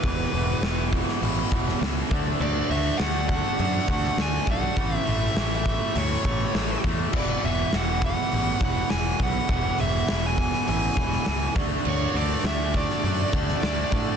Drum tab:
CC |----------------|x---------------|----------------|x---------------|
HH |o-o-o-o-o-o-o-o-|--o-o-o-o-o-o-o-|o-o-o-o-o-o-o-o-|--o-o-o-o-o-o-o-|
SD |----o--o---oo---|----o------oo---|----o-------o---|----o-------o---|
BD |o-----o---o---o-|------o---o---o-|o-----o---o---o-|o-----o---o---o-|

CC |----------------|x---------------|
HH |o-o-o-o-o-o-o-o-|--o-o-o-o-o-o-o-|
SD |----o--o---oo---|----o--o---oo---|
BD |o-----o---o---o-|------o---o---o-|